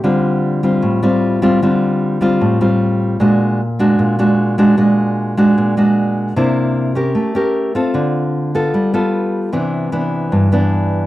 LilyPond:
\new Staff \with { instrumentName = "Nylon-string guitar" } { \time 4/4 \key d \minor \tempo 4 = 152 << { <g c' f'>4. <g c' f'>4 <g c' f'>4 <g c' f'>8 | <g c' f'>4. <g c' f'>4 <g c' f'>4. | <aes d' fis'>4 r8 <aes d' fis'>4 <aes d' fis'>4 <aes d' fis'>8 | <aes d' fis'>4. <aes d' fis'>4 <aes d' fis'>4. |
<bes d' e'>4. <des' g' bes'>4 <cis' g' bes'>4 <c' f' a'>8~ | <c' f' a'>4. <b f' a'>4 <b f' a'>4. | \key c \major <e b d'>4 <e b d'>4. <e b d'>4. | } \\ { d2 a,2 | d2 a,2 | bes,2 bes,2 | bes,2 bes,2 |
c2 a2 | d2 g2 | c2 g,2 | } >> }